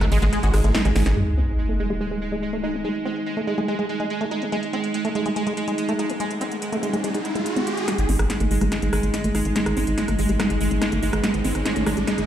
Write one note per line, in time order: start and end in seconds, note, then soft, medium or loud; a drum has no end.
0.00 0.08 G#1 medium
0.00 1.15 G#3 medium
0.00 0.07 G#3 medium
0.00 0.06 A3 medium
0.00 1.15 D#4 medium
0.00 1.17 G#4 medium
0.00 1.17 G#5 medium
0.00 cross-stick medium
0.00 closed hi-hat medium
0.12 0.19 G#1 loud
0.12 0.18 G#3 medium
0.12 0.17 G#3 medium
0.12 open hi-hat loud
0.12 ride medium
0.22 0.29 G#1 loud
0.22 0.25 G#3 loud
0.22 0.28 G#4 medium
0.22 closed hi-hat medium
0.33 0.39 G#3 medium
0.33 0.38 G#3 medium
0.33 cross-stick soft
0.33 closed hi-hat loud
0.43 0.50 G#1 medium
0.43 0.50 G#3 medium
0.43 0.49 F#4 medium
0.43 closed hi-hat medium
0.54 0.61 G#1 loud
0.54 0.59 G#3 medium
0.54 cross-stick medium
0.54 open hi-hat loud
0.54 ride medium
0.64 0.71 G#1 loud
0.64 0.70 G#3 medium
0.64 0.71 A3 medium
0.64 closed hi-hat medium
0.75 0.80 D#4 loud
0.75 snare loud
0.75 closed hi-hat loud
0.85 0.92 A1 medium
0.85 0.88 G#3 loud
0.85 0.91 G#3 medium
0.85 cross-stick soft
0.85 closed hi-hat medium
0.96 1.03 G#1 loud
0.96 1.01 G#3 medium
0.96 snare medium
0.96 open hi-hat loud
0.96 ride medium
1.06 1.13 G#1 medium
1.06 1.11 G#3 medium
1.06 1.09 A3 medium
1.06 snare medium
1.06 closed hi-hat medium
1.17 7.87 G#3 medium
1.17 1.21 G#3 medium
1.17 12.26 D#4 medium
1.17 closed hi-hat medium
1.17 crash medium
1.17 sub drop medium
1.27 closed hi-hat medium
1.38 1.40 C4 medium
1.38 closed hi-hat medium
1.48 closed hi-hat medium
1.59 closed hi-hat medium
1.69 1.73 A3 medium
1.69 closed hi-hat medium
1.80 1.86 G#3 medium
1.80 12.26 G#4 medium
1.80 closed hi-hat medium
1.90 1.93 G#3 loud
1.90 closed hi-hat medium
2.01 2.07 G#3 medium
2.01 closed hi-hat medium
2.11 2.18 G#3 medium
2.11 closed hi-hat medium
2.22 closed hi-hat medium
2.32 2.36 G#3 medium
2.32 closed hi-hat medium
2.42 closed hi-hat medium
2.53 2.57 A3 medium
2.53 closed hi-hat medium
2.63 2.75 D#4 medium
2.63 closed hi-hat medium
2.74 2.77 G#3 loud
2.74 closed hi-hat medium
2.82 2.89 G#3 medium
2.82 5.21 G#5 medium
2.82 closed hi-hat medium
2.95 closed hi-hat medium
3.05 3.08 C4 medium
3.05 closed hi-hat medium
3.16 closed hi-hat medium
3.26 closed hi-hat medium
3.37 3.41 A3 medium
3.37 closed hi-hat soft
3.47 3.54 G#3 medium
3.47 closed hi-hat medium
3.58 3.60 G#3 medium
3.58 closed hi-hat medium
3.68 3.75 G#3 medium
3.68 closed hi-hat medium
3.79 3.85 G#3 medium
3.79 closed hi-hat medium
3.89 closed hi-hat medium
4.00 4.04 G#3 medium
4.00 closed hi-hat soft
4.10 closed hi-hat medium
4.21 4.25 A3 medium
4.21 closed hi-hat medium
4.31 4.43 D#4 medium
4.31 closed hi-hat medium
4.42 4.44 G#3 loud
4.42 closed hi-hat medium
4.52 4.57 G#3 medium
4.52 closed hi-hat medium
4.52 riser medium
4.63 closed hi-hat medium
4.73 4.76 C4 medium
4.73 closed hi-hat medium
4.84 closed hi-hat medium
4.94 closed hi-hat medium
5.05 5.09 A3 medium
5.05 9.00 F#5 medium
5.05 closed hi-hat soft
5.15 5.22 G#3 medium
5.15 closed hi-hat medium
5.26 5.28 G#3 loud
5.26 closed hi-hat medium
5.36 5.43 G#3 medium
5.36 closed hi-hat medium
5.47 5.53 G#3 medium
5.47 closed hi-hat medium
5.57 closed hi-hat medium
5.68 5.72 G#3 medium
5.68 closed hi-hat medium
5.78 closed hi-hat medium
5.89 5.93 A3 medium
5.89 closed hi-hat soft
5.99 6.11 D#4 medium
5.99 closed hi-hat medium
6.10 6.12 G#3 loud
6.10 closed hi-hat medium
6.20 6.24 G#3 medium
6.20 closed hi-hat medium
6.31 closed hi-hat soft
6.41 6.44 C4 medium
6.41 closed hi-hat medium
6.52 closed hi-hat soft
6.62 closed hi-hat medium
6.72 6.77 A3 medium
6.72 closed hi-hat soft
6.83 6.90 G#3 medium
6.83 closed hi-hat medium
6.93 6.96 G#3 medium
6.93 closed hi-hat medium
7.04 7.10 G#3 medium
7.04 closed hi-hat medium
7.14 7.21 G#3 medium
7.14 closed hi-hat soft
7.25 closed hi-hat medium
7.35 7.40 G#3 loud
7.35 closed hi-hat soft
7.46 closed hi-hat medium
7.56 7.79 C4 loud
7.56 closed hi-hat soft
7.67 closed hi-hat medium
7.77 7.80 G#3 medium
7.77 closed hi-hat soft
7.88 12.26 G#3 medium
7.88 7.92 G#3 medium
7.88 cross-stick soft
7.88 snare soft
7.88 closed hi-hat loud
7.88 riser medium
7.98 8.06 G#1 medium
7.98 closed hi-hat medium
8.09 8.16 G#1 loud
8.09 8.12 C4 medium
8.09 open hi-hat loud
8.19 8.27 G#1 medium
8.19 cross-stick medium
8.19 closed hi-hat medium
8.30 snare soft
8.30 closed hi-hat medium
8.40 8.48 G#1 medium
8.40 8.45 A3 medium
8.40 closed hi-hat medium
8.51 8.58 G#1 loud
8.51 8.57 G#3 medium
8.51 open hi-hat loud
8.61 8.69 G#1 medium
8.61 8.64 G#3 loud
8.61 cross-stick soft
8.61 closed hi-hat medium
8.72 8.78 G#3 medium
8.72 snare soft
8.72 closed hi-hat loud
8.82 8.90 G#1 medium
8.82 8.89 G#3 medium
8.82 closed hi-hat medium
8.93 9.00 G#1 loud
8.93 cross-stick medium
8.93 open hi-hat loud
9.03 9.10 G#1 medium
9.03 9.08 G#3 medium
9.03 closed hi-hat medium
9.14 12.26 G#5 medium
9.14 snare medium
9.14 closed hi-hat loud
9.24 9.31 G#1 medium
9.24 9.29 A3 medium
9.24 closed hi-hat medium
9.35 9.42 G#1 medium
9.35 9.47 D#4 medium
9.35 cross-stick soft
9.35 open hi-hat loud
9.45 9.52 G#1 medium
9.45 9.48 G#3 loud
9.45 closed hi-hat medium
9.56 9.60 G#3 medium
9.56 snare medium
9.56 closed hi-hat loud
9.66 9.73 G#1 medium
9.66 cross-stick medium
9.66 closed hi-hat medium
9.77 9.84 G#1 loud
9.77 9.79 C4 medium
9.77 open hi-hat loud
9.87 9.94 G#1 medium
9.87 closed hi-hat medium
9.98 snare medium
9.98 closed hi-hat medium
10.08 10.15 G#1 medium
10.08 10.13 A3 medium
10.08 cross-stick soft
10.08 closed hi-hat soft
10.19 10.26 G#1 loud
10.19 10.25 G#3 medium
10.19 open hi-hat loud
10.29 10.36 G#1 loud
10.29 10.32 G#3 medium
10.29 closed hi-hat medium
10.40 10.46 G#3 medium
10.40 cross-stick medium
10.40 snare medium
10.40 closed hi-hat medium
10.50 10.57 G#1 medium
10.50 10.57 G#3 medium
10.50 closed hi-hat medium
10.61 10.68 G#1 loud
10.61 open hi-hat loud
10.71 10.78 G#1 medium
10.71 10.76 G#3 medium
10.71 closed hi-hat medium
10.82 cross-stick soft
10.82 snare medium
10.82 closed hi-hat medium
10.92 10.99 G#1 medium
10.92 10.96 A3 medium
10.92 closed hi-hat medium
11.03 11.10 G#1 loud
11.03 11.15 D#4 medium
11.03 open hi-hat loud
11.13 11.20 G#1 medium
11.13 11.16 G#3 loud
11.13 cross-stick medium
11.13 closed hi-hat medium
11.24 11.28 G#3 medium
11.24 snare medium
11.24 closed hi-hat medium
11.34 11.41 G#1 medium
11.34 closed hi-hat medium
11.45 11.52 G#1 loud
11.45 11.47 C4 medium
11.45 open hi-hat loud
11.55 11.62 G#1 medium
11.55 cross-stick soft
11.55 closed hi-hat medium
11.66 snare medium
11.66 closed hi-hat medium
11.76 11.83 G#1 medium
11.76 11.80 A3 medium
11.76 closed hi-hat medium
11.86 11.94 G#1 loud
11.86 11.93 G#3 medium
11.86 cross-stick medium
11.86 open hi-hat loud
11.97 12.04 G#1 loud
11.97 12.00 G#3 loud
11.97 closed hi-hat medium
12.07 12.14 G#3 medium
12.07 snare medium
12.07 closed hi-hat medium
12.18 12.25 G#1 medium
12.18 12.25 G#3 medium
12.18 closed hi-hat medium